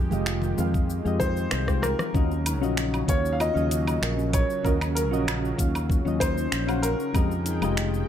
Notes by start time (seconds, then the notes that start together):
Already playing: F2 D#3 G#3 G4
0.11 F1 G#3 F4 G4 D#5, muted conga, high conga, shaker
0.26 F4, finger snap, shaker
0.42 muted conga, shaker
0.57 F2 G#3 F4 G4 F5, low conga, shaker
0.74 kick, shaker
0.90 shaker
1.05 F2 G#3 F4 G4 D#5, shaker
1.20 D#4 C5, kick, high conga, low conga, shaker
1.37 shaker
1.51 C2 C4, finger snap, cross-stick, shaker
1.67 G#3 F4 G4 G5, kick, cross-stick, shaker
1.82 A#4, cross-stick, high conga, shaker
1.99 cross-stick, high conga, shaker
2.14 D#2 C#3 F#3 C#4 F4 F#4 D#5, kick, shaker
2.31 shaker
2.46 D#4, closed hi-hat, low woodblock, shaker
2.61 A#1 C#4 F4 F#4 D#5, shaker
2.77 finger snap, shaker
2.94 low woodblock, shaker
3.07 D#2 C#4 F4 F#4 C#5 F5, kick, closed hi-hat, shaker
3.26 shaker
3.33 F5
3.40 F4 D#5, low woodblock, shaker
3.54 D#2 F#3 C#4 D#5 F5, shaker
3.71 F#4, closed hi-hat, shaker
3.87 low woodblock, shaker
4.02 A#1 A#4, finger snap, shaker
4.17 F#3 C#4, shaker
4.33 C#5, kick, closed hi-hat, low woodblock, shaker
4.50 shaker
4.63 D#2 C#4 F4 F#4 A#4 D#5, kick, shaker
4.81 finger snap, low woodblock, shaker
4.95 A#4, closed hi-hat, shaker
5.11 A#1 C#4 F4 F#4 D#5, shaker
5.28 F4, finger snap, low woodblock, shaker
5.45 shaker
5.57 D#2 F#3 C#4 F4 F5, kick, closed hi-hat, shaker
5.75 low woodblock, shaker
5.90 kick, shaker
6.05 D#2 F#3 C#4 F4 D#5, shaker
6.20 D#4 C5, kick, closed hi-hat, low woodblock, shaker
6.38 shaker
6.52 A#1 C#4, finger snap, shaker
6.67 C#4 F#4 F5 F#5, low woodblock, shaker
6.82 A#4, closed hi-hat, shaker
7.00 shaker
7.13 F2 D#3 G#3 C4 F4 G4 D#5 G5, kick, low woodblock, shaker
7.31 shaker
7.46 D#4, closed hi-hat, shaker
7.62 F1 G#3 F4 G4 D#5, low woodblock, shaker
7.77 finger snap, shaker
7.94 shaker